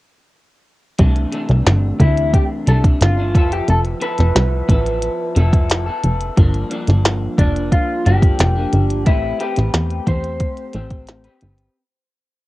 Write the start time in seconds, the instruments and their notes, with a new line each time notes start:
0.99 analog synth bass C2, clean electric guitar C3 E3 A3 D4, kick, closed hi-hat
1.16 closed hi-hat
1.32 clean electric guitar C3 E3 A3 D4, closed hi-hat
1.49 analog synth bass C2, snare, closed hi-hat
1.66 analog synth bass G1, snare, closed hi-hat
1.99 analog synth bass D2, clean electric guitar C3 E3 A3 D4 E4, kick, closed hi-hat
2.18 closed hi-hat
2.34 clean electric guitar G4, kick, closed hi-hat
2.66 analog synth bass C2, clean electric guitar C3 E3 A3 D4 A4, closed hi-hat
2.84 kick, closed hi-hat
3.01 analog synth bass G1, clean electric guitar F4, snare, closed hi-hat
3.17 clean electric guitar E3 A3 D4
3.34 analog synth bass F1, clean electric guitar F3 B3 E4 A4, kick, closed hi-hat
3.52 clean electric guitar G4, closed hi-hat
3.68 analog synth bass F1, clean electric guitar A4, closed hi-hat
3.85 closed hi-hat
4.00 clean electric guitar F3 B3 E4 A4 B4, closed hi-hat
4.18 analog synth bass F1, snare, closed hi-hat
4.35 analog synth bass C2, snare, closed hi-hat
4.68 analog synth bass A1, clean electric guitar F3 B3 E4 A4, kick, closed hi-hat
4.86 closed hi-hat
5.02 closed hi-hat
5.35 analog synth bass F1, clean electric guitar F3 B3 E4 A4, closed hi-hat
5.53 kick, closed hi-hat
5.70 snare, closed hi-hat
5.86 clean electric guitar B3 E4 A4
6.04 analog synth bass F1, closed hi-hat
6.21 closed hi-hat
6.36 analog synth bass G1, clean electric guitar G2 F3 A#3 D4, kick, closed hi-hat
6.54 closed hi-hat
6.70 clean electric guitar G2 F3 A#3 D4, closed hi-hat
6.87 analog synth bass G1, snare, closed hi-hat
7.05 snare, closed hi-hat
7.37 analog synth bass F1, clean electric guitar G2 F3 A#3 D4, kick, closed hi-hat
7.56 closed hi-hat
7.72 clean electric guitar F4, kick, closed hi-hat
8.05 analog synth bass G1, clean electric guitar G2 F3 A#3 D4 G4, closed hi-hat
8.22 kick, closed hi-hat
8.39 analog synth bass F1, snare, closed hi-hat
8.56 clean electric guitar F3 A#3 D4
8.73 analog synth bass G1, closed hi-hat
8.90 closed hi-hat
9.06 analog synth bass A1, clean electric guitar A3 C4 E4 G4 B4, kick, closed hi-hat
9.39 clean electric guitar A3 C4 G4 B4, closed hi-hat
9.56 analog synth bass A1, snare, closed hi-hat
9.74 analog synth bass E2, snare, closed hi-hat
9.91 closed hi-hat
10.06 analog synth bass E2, clean electric guitar A3 C4 G4 C5, kick, closed hi-hat
10.24 closed hi-hat
10.40 kick, closed hi-hat
10.57 closed hi-hat
10.73 analog synth bass A1, clean electric guitar A3 C4 G4, closed hi-hat
10.91 kick, closed hi-hat
11.07 snare, closed hi-hat
11.24 clean electric guitar C4 G4 B4, closed hi-hat
11.41 analog synth bass G1, closed hi-hat
11.58 closed hi-hat